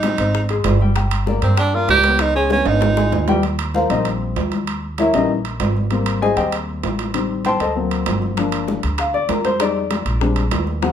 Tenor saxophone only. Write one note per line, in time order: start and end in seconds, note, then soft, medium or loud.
0.00 0.50 D#4 medium
1.43 1.57 C4 medium
1.59 1.76 D4 loud
1.75 1.90 F4 medium
1.91 2.23 G4 loud
2.21 2.35 D#4 medium
2.36 2.50 C#4 medium
2.52 2.69 C#4 medium
2.68 3.29 D#4 medium